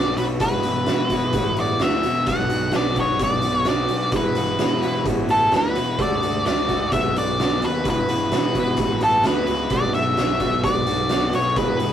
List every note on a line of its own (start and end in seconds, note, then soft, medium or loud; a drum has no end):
0.00 0.16 B1 medium
0.00 0.39 B2 medium
0.00 0.41 F#3 medium
0.00 0.20 B3 loud
0.00 0.18 D4 medium
0.00 0.17 F#4 loud
0.00 0.18 D5 medium
0.17 0.40 B1 medium
0.17 0.42 B3 medium
0.17 0.40 D4 medium
0.17 0.43 F#4 medium
0.17 0.25 B4 medium
0.17 closed hi-hat medium
0.40 0.63 E1 medium
0.40 0.87 E2 medium
0.40 0.88 B2 loud
0.40 0.66 E3 medium
0.40 0.66 B3 loud
0.40 0.64 E4 medium
0.40 0.64 F#4 loud
0.40 1.60 B4 medium
0.40 kick medium
0.40 closed hi-hat medium
0.53 snare soft
0.63 0.86 E1 medium
0.63 0.89 B3 medium
0.63 0.88 E4 medium
0.63 0.90 F#4 medium
0.63 closed hi-hat medium
0.68 0.87 E3 medium
0.86 1.10 E1 medium
0.86 1.12 E3 medium
0.86 1.12 B3 medium
0.86 1.11 E4 medium
0.86 snare loud
0.86 closed hi-hat medium
0.91 1.11 F#4 medium
1.10 1.33 E1 medium
1.10 1.59 B2 medium
1.10 1.33 E3 medium
1.10 1.35 B3 medium
1.10 1.35 E4 medium
1.10 1.37 F#4 medium
1.10 kick medium
1.10 closed hi-hat medium
1.14 1.59 E2 medium
1.33 1.79 A1 medium
1.33 1.60 E3 medium
1.33 1.60 B3 medium
1.33 1.58 E4 medium
1.33 kick loud
1.33 closed hi-hat medium
1.37 1.57 F#4 medium
1.57 1.82 B3 medium
1.57 1.82 E4 medium
1.57 1.83 F#4 medium
1.57 1.83 D5 medium
1.57 closed hi-hat medium
1.61 1.81 E3 soft
1.80 2.03 D2 medium
1.80 2.26 E2 medium
1.80 2.27 B2 medium
1.80 2.07 E3 medium
1.80 2.07 B3 medium
1.80 2.05 E4 medium
1.80 2.05 F#4 medium
1.80 2.28 E5 loud
1.80 snare loud
1.80 closed hi-hat medium
2.03 2.27 E1 medium
2.03 2.29 B3 medium
2.03 2.27 E4 medium
2.03 2.31 F#4 medium
2.03 closed hi-hat medium
2.08 2.28 E3 medium
2.26 2.50 B1 medium
2.26 2.74 B2 loud
2.26 2.74 F#3 medium
2.26 2.54 B3 loud
2.26 2.71 F#5 medium
2.26 kick medium
2.26 closed hi-hat medium
2.31 2.51 D4 loud
2.31 2.50 F#4 loud
2.39 snare soft
2.50 2.74 B1 medium
2.50 2.75 D4 medium
2.50 2.76 F#4 medium
2.50 closed hi-hat medium
2.54 2.75 B3 medium
2.72 3.19 B1 medium
2.72 3.00 F#3 medium
2.72 2.99 B3 medium
2.72 snare loud
2.72 closed hi-hat medium
2.76 2.98 D4 medium
2.76 2.98 F#4 medium
2.76 2.97 D5 medium
2.96 3.20 F#3 medium
2.96 3.20 B3 medium
2.96 3.21 D4 medium
2.96 3.23 F#4 medium
2.96 kick medium
2.96 closed hi-hat medium
3.00 3.46 B2 medium
3.00 3.23 C#5 medium
3.19 3.43 B1 loud
3.19 3.67 F#3 medium
3.19 3.46 B3 medium
3.19 3.44 D4 medium
3.19 3.43 F#4 medium
3.19 kick loud
3.19 closed hi-hat medium
3.23 3.68 D5 medium
3.42 3.66 B1 medium
3.42 3.68 D4 medium
3.42 3.69 F#4 medium
3.42 closed hi-hat medium
3.47 3.67 B3 medium
3.65 3.89 B1 medium
3.65 4.12 B2 medium
3.65 4.14 F#3 medium
3.65 3.92 B3 loud
3.65 snare medium
3.65 closed hi-hat medium
3.69 3.90 D4 medium
3.69 3.90 F#4 loud
3.69 4.11 D5 medium
3.89 4.12 B1 medium
3.89 4.13 D4 medium
3.89 4.16 F#4 medium
3.89 closed hi-hat medium
3.93 4.14 B3 medium
4.12 4.35 E1 medium
4.12 4.60 E2 medium
4.12 4.60 B2 medium
4.12 4.38 E3 loud
4.12 4.37 B3 medium
4.12 4.36 E4 loud
4.12 kick loud
4.12 closed hi-hat medium
4.16 4.36 F#4 medium
4.16 5.04 B4 medium
4.35 4.59 E1 medium
4.35 4.57 E3 medium
4.35 4.58 B3 medium
4.35 4.59 E4 medium
4.35 4.61 F#4 medium
4.35 closed hi-hat medium
4.59 4.82 E1 medium
4.59 4.82 E3 medium
4.59 4.82 B3 medium
4.59 4.81 E4 medium
4.59 4.82 F#4 medium
4.59 snare medium
4.59 closed hi-hat medium
4.82 5.05 E1 medium
4.82 5.31 E2 medium
4.82 5.31 B2 medium
4.82 5.04 E3 medium
4.82 5.05 B3 medium
4.82 5.06 E4 medium
4.82 5.08 F#4 medium
4.82 closed hi-hat medium
5.05 5.51 A1 medium
5.05 5.30 E3 medium
5.05 5.29 B3 medium
5.05 5.28 E4 medium
5.05 5.28 F#4 medium
5.05 kick loud
5.05 closed hi-hat medium
5.28 5.51 E3 medium
5.28 5.52 B3 medium
5.28 5.53 E4 medium
5.28 5.54 F#4 medium
5.28 5.52 A4 medium
5.28 closed hi-hat medium
5.51 5.76 D2 medium
5.51 5.97 E2 medium
5.51 5.98 B2 medium
5.51 5.76 E3 medium
5.51 5.75 B3 medium
5.51 5.75 E4 medium
5.51 5.74 F#4 medium
5.51 snare medium
5.51 closed hi-hat medium
5.56 5.98 B4 medium
5.75 5.98 E1 medium
5.75 5.98 E3 medium
5.75 5.98 B3 soft
5.75 5.98 E4 medium
5.75 6.00 F#4 medium
5.75 closed hi-hat medium
5.98 6.22 D2 medium
5.98 6.45 D3 medium
5.98 6.23 A3 medium
5.98 6.22 D4 medium
5.98 6.21 F#4 loud
5.98 6.44 D5 medium
5.98 kick loud
5.98 closed hi-hat medium
6.12 snare soft
6.22 6.45 D2 medium
6.22 6.44 A3 medium
6.22 6.45 D4 medium
6.22 6.47 F#4 medium
6.22 closed hi-hat medium
6.45 6.92 C#2 medium
6.45 6.69 A3 medium
6.45 6.68 D4 medium
6.45 6.68 F#4 medium
6.45 6.90 D5 medium
6.45 snare medium
6.45 closed hi-hat medium
6.68 6.92 D3 medium
6.68 6.92 A3 medium
6.68 6.91 D4 medium
6.68 6.94 F#4 loud
6.68 kick medium
6.68 closed hi-hat medium
6.91 7.15 B1 loud
6.91 7.37 B2 medium
6.91 7.39 F#3 medium
6.91 7.18 B3 medium
6.91 7.16 D4 medium
6.91 7.16 F#4 medium
6.91 7.17 E5 loud
6.91 kick loud
6.91 closed hi-hat medium
7.16 7.39 B1 medium
7.16 7.40 B3 medium
7.16 7.40 D4 medium
7.16 7.41 F#4 medium
7.16 7.65 D5 medium
7.16 closed hi-hat medium
7.38 7.62 B1 medium
7.38 7.84 B2 medium
7.38 7.86 F#3 medium
7.38 7.64 B3 medium
7.38 7.62 D4 medium
7.38 7.62 F#4 loud
7.38 snare medium
7.38 closed hi-hat medium
7.62 7.85 D#2 medium
7.62 7.87 B3 medium
7.62 7.85 D4 medium
7.62 7.87 F#4 medium
7.62 7.87 B4 medium
7.62 closed hi-hat medium
7.85 8.08 E1 medium
7.85 8.32 E2 loud
7.85 8.32 B2 loud
7.85 8.10 E3 medium
7.85 8.10 B3 medium
7.85 8.08 E4 medium
7.85 8.08 F#4 medium
7.85 kick loud
7.85 closed hi-hat medium
7.90 9.00 B4 medium
8.08 8.31 E1 medium
8.08 8.31 E3 medium
8.08 8.33 B3 medium
8.08 8.33 E4 medium
8.08 8.34 F#4 medium
8.08 closed hi-hat medium
8.32 8.54 E1 medium
8.32 8.56 E3 medium
8.32 8.56 B3 medium
8.32 8.54 E4 medium
8.32 8.55 F#4 medium
8.32 snare loud
8.32 closed hi-hat medium
8.54 8.77 E1 medium
8.54 9.03 E2 medium
8.54 9.03 B2 medium
8.54 8.77 E3 medium
8.54 8.79 B3 medium
8.54 8.79 E4 medium
8.54 8.81 F#4 medium
8.54 kick medium
8.54 closed hi-hat medium
8.77 9.23 A1 medium
8.77 9.03 E3 medium
8.77 9.03 B3 medium
8.77 9.01 E4 medium
8.77 kick medium
8.77 closed hi-hat medium
8.81 9.01 F#4 medium
9.01 9.25 E3 soft
9.01 9.26 B3 medium
9.01 9.25 E4 medium
9.01 9.27 F#4 medium
9.01 9.26 A4 medium
9.01 closed hi-hat medium
9.24 9.47 D2 medium
9.24 9.70 E2 medium
9.24 9.70 B2 medium
9.24 9.49 E3 medium
9.24 9.49 B3 medium
9.24 9.47 E4 medium
9.24 9.47 F#4 medium
9.24 9.74 B4 medium
9.24 snare loud
9.24 closed hi-hat medium
9.47 9.70 C#2 medium
9.47 9.71 E3 medium
9.47 9.72 B3 medium
9.47 9.70 E4 medium
9.47 9.74 F#4 medium
9.47 closed hi-hat medium
9.70 9.93 B1 medium
9.70 10.18 B2 medium
9.70 10.16 F#3 loud
9.70 9.97 B3 medium
9.70 9.95 D4 loud
9.70 9.94 F#4 loud
9.70 9.94 D5 medium
9.70 kick loud
9.70 closed hi-hat medium
9.83 snare soft
9.94 10.17 B1 medium
9.94 10.17 B3 medium
9.94 10.18 D4 medium
9.94 10.19 F#4 medium
9.94 10.60 E5 medium
9.94 closed hi-hat medium
10.17 10.62 B1 medium
10.17 10.41 F#3 medium
10.17 10.41 B3 medium
10.17 10.39 D4 medium
10.17 10.39 F#4 medium
10.17 snare medium
10.17 closed hi-hat medium
10.39 10.88 B2 medium
10.39 10.62 F#3 medium
10.39 10.62 B3 medium
10.39 10.64 D4 medium
10.39 10.65 F#4 medium
10.39 kick medium
10.39 closed hi-hat medium
10.62 10.86 B1 loud
10.62 11.11 F#3 medium
10.62 10.88 B3 medium
10.62 10.87 D4 medium
10.62 10.85 F#4 medium
10.62 11.35 D5 loud
10.62 kick loud
10.62 closed hi-hat medium
10.86 11.09 B1 medium
10.86 11.10 B3 medium
10.86 11.11 D4 medium
10.86 11.12 F#4 medium
10.86 closed hi-hat medium
11.09 11.33 B1 medium
11.09 11.56 B2 medium
11.09 11.58 F#3 medium
11.09 11.36 B3 medium
11.09 11.35 D4 medium
11.09 11.34 F#4 medium
11.09 snare medium
11.09 closed hi-hat medium
11.33 11.56 B1 medium
11.33 11.57 D4 medium
11.33 11.59 F#4 medium
11.33 11.56 C#5 medium
11.33 closed hi-hat medium
11.37 11.57 B3 medium
11.56 11.79 E1 medium
11.56 11.93 E2 medium
11.56 11.93 B2 medium
11.56 11.82 E3 medium
11.56 11.81 B3 loud
11.56 11.81 E4 loud
11.56 11.79 F#4 loud
11.56 11.93 B4 medium
11.56 kick loud
11.56 closed hi-hat medium
11.80 11.93 E1 medium
11.80 11.93 E3 medium
11.80 11.93 B3 medium
11.80 11.93 E4 medium
11.80 11.93 F#4 medium
11.80 closed hi-hat medium